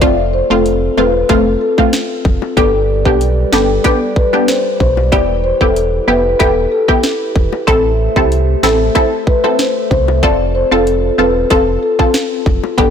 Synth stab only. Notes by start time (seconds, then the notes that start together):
0.01 A3 C4 F4
0.50 A3 C4 F4
0.97 A3 C4 F4
1.29 A3 C4 F4
1.78 A3 C4 F4
2.57 B3 D4 G4
3.06 B3 D4 G4
3.52 B3 D4 G4
3.84 B3 D4 G4
4.33 B3 D4 G4
5.12 B3 E4 G4
5.61 B3 E4 G4
6.08 B3 E4 G4
6.39 B3 E4 G4
6.88 B3 E4 G4
7.67 C4 E4 A4
8.16 C4 E4 A4
8.63 C4 E4 A4
8.95 C4 E4 A4
9.44 C4 E4 A4
10.23 C4 F4 A4
10.71 C4 F4 A4
11.18 C4 F4 A4
11.50 C4 F4 A4
11.99 C4 F4 A4
12.78 B3 D4 G4